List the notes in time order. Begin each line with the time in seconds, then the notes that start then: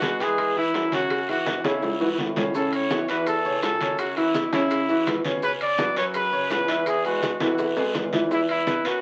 Already playing: E2 F#4
0.02 G#3 G#4 B4, high bongo, high conga, low timbale, short guiro
0.20 E3 G#3 G#4 B4, high conga, high timbale, short guiro
0.38 high bongo, high conga, high timbale, long guiro
0.56 E3 E4 E5, high conga
0.74 F#2, high bongo, low bongo, high conga, high timbale, low timbale, short guiro
0.92 C#3 C#4 F#4 C#5, high conga, high timbale, short guiro
1.10 high bongo, high conga, high timbale, long guiro
1.28 E3 E4 F#4, high bongo, high conga, high timbale
1.46 low bongo, high conga, low timbale, short guiro
1.64 C#3 C#4 E4 C#5, high bongo, high conga, high timbale, short guiro
1.82 low bongo, high conga, low timbale, long guiro
2.00 B2 E3 E4 F#4, low bongo, high conga, low timbale
2.18 A2, low bongo, high conga, low timbale, short guiro
2.36 C#3 C#4 C#5, low bongo, high conga, low timbale, short guiro
2.54 C#3 C#4 A4 C#5, high bongo, high conga, long guiro, maracas
2.73 C#5, high conga, high timbale, maracas
2.90 E3 E4 F#4, high bongo, high conga, low timbale, short guiro, maracas
3.08 E2 E3 E4 F#4 B4, high conga, high timbale, short guiro, maracas
3.26 A4, high bongo, high conga, high timbale, long guiro, maracas
3.44 C#3 C#4 C#5, high conga, maracas
3.62 F#2 A4, high bongo, low bongo, high conga, high timbale, low timbale, short guiro, maracas
3.80 C#3 C#4 C#5, high conga, high timbale, short guiro, maracas
3.99 F#4, high bongo, high timbale, long guiro, maracas
4.16 E3 E4 F#4, high conga, high timbale, maracas
4.35 high bongo, high conga, low timbale, short guiro, maracas
4.52 C#3 C#4 E4 C#5, high bongo, high conga, high timbale, short guiro, maracas
4.70 high bongo, high conga, high timbale, long guiro, maracas
4.88 C#3 E3 E4 F#4, high bongo, high conga, maracas
5.06 B2, high bongo, low bongo, high conga, high timbale, low timbale, short guiro, maracas
5.24 C#3 C#4 C#5, high bongo, high conga, short guiro, maracas
5.42 C#3 C#4 B4 C#5, high bongo, high conga, long guiro, maracas
5.61 D5, high conga, high timbale, maracas
5.78 F#3 F#4 B4, high bongo, high conga, low timbale, short guiro, maracas
5.96 F#2 F#3 F#4 B4 C#5, high conga, high timbale, short guiro, maracas
6.14 B4, high bongo, high conga, high timbale, long guiro, maracas
6.32 C#3 C#4 C#5, high conga, maracas
6.50 E2 B4, high bongo, low bongo, high conga, high timbale, low timbale, short guiro, maracas
6.68 E3 E4 E5, high timbale, short guiro, maracas
6.86 G#4, high bongo, high conga, high timbale, long guiro, maracas
7.05 G#3 F#4 G#4 B4, high conga, high timbale, maracas
7.22 high bongo, high conga, low timbale, short guiro, maracas
7.40 B2 E3 E4 F#4 E5, high bongo, high conga, high timbale, short guiro, maracas
7.58 high bongo, high conga, high timbale, long guiro, maracas
7.77 G#3 G#4 B4, high bongo, high conga, high timbale, maracas
7.95 E2, high bongo, low bongo, high conga, low timbale, short guiro, maracas
8.13 E3 E4 E5, high bongo, high conga, low timbale, short guiro, maracas
8.31 E3 E4 E5, high bongo, high conga, long guiro, maracas
8.49 E4, high conga, high timbale, maracas
8.67 B3 B4, high bongo, high conga, low timbale, short guiro, maracas
8.85 F#2 B3 F#4 B4, high conga, high timbale, short guiro, maracas